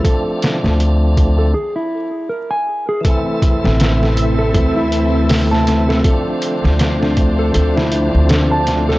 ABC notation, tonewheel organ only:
X:1
M:4/4
L:1/8
Q:"Swing 16ths" 1/4=80
K:Am
V:1 name="Tonewheel organ"
[F,A,CD]4 z4 | [E,A,CE]4- [E,A,CE] [E,A,CE]3 | [F,A,CD]4- [F,A,CD] [F,A,CD]3 |]